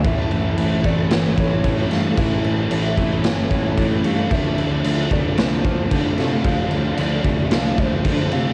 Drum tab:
CC |xxxxxxxx|xxxxxxxx|xxxxxxxx|xxxxxxxx|
SD |----o--o|----o---|----o--o|----o---|
BD |o--o-oo-|o--o-oo-|o--o-oo-|o--o-oo-|